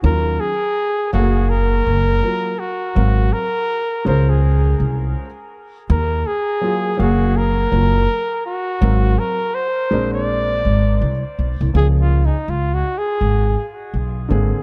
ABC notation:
X:1
M:4/4
L:1/16
Q:"Swing 16ths" 1/4=82
K:Db
V:1 name="Flugelhorn"
B2 A4 G2 B6 G2- | G2 B4 B A4 z4 z | B2 A4 G2 B6 G2- | G2 B2 c3 =d6- d z2 |
(3A2 F2 E2 (3F2 G2 A2- A2 z6 |]
V:2 name="Grand piano"
[E,G,DF]2 z4 [G,=A,B,_Af]4 z2 [G,B,FB]2 z2 | [G,CBf]2 z4 [A,DFc]6 z4 | z4 [G,B,FA]2 [G,B,Af]4 [G,B,FB]2 z4 | [G,CBf]2 z4 [A,C=DB]6 z4 |
[F,B,DA]2 z12 [=D,B,CA]2 |]
V:3 name="Upright bass" clef=bass
E,,2 z4 G,,,4 G,,,2 z4 | A,,,2 z4 D,,4 C,,2 z4 | E,,2 z4 G,,,4 G,,,2 z4 | A,,,2 z4 B,,,4 A,,,2 C,, z _C,, =C,, |
D,,3 z D,,2 z2 A,,,2 z2 _C,,2 A,,, z |]